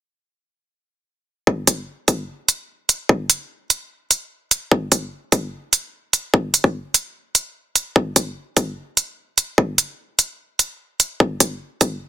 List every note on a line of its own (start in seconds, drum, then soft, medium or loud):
1.47 kick loud
1.67 kick medium
1.67 closed hi-hat medium
2.08 kick medium
2.08 closed hi-hat medium
2.48 closed hi-hat medium
2.89 closed hi-hat medium
3.09 kick loud
3.30 closed hi-hat medium
3.70 closed hi-hat medium
4.11 closed hi-hat medium
4.51 closed hi-hat medium
4.71 kick loud
4.92 kick medium
4.92 closed hi-hat medium
5.32 kick medium
5.32 closed hi-hat medium
5.73 closed hi-hat medium
6.13 closed hi-hat medium
6.34 kick loud
6.54 closed hi-hat medium
6.64 kick medium
6.94 closed hi-hat medium
7.35 closed hi-hat medium
7.76 closed hi-hat medium
7.96 kick loud
8.16 kick medium
8.16 closed hi-hat medium
8.57 kick medium
8.57 closed hi-hat medium
8.97 closed hi-hat medium
9.38 closed hi-hat medium
9.58 kick medium
9.78 closed hi-hat medium
10.19 closed hi-hat medium
10.59 closed hi-hat medium
11.00 closed hi-hat medium
11.20 kick loud
11.40 kick medium
11.40 closed hi-hat medium
11.81 kick medium
11.81 closed hi-hat medium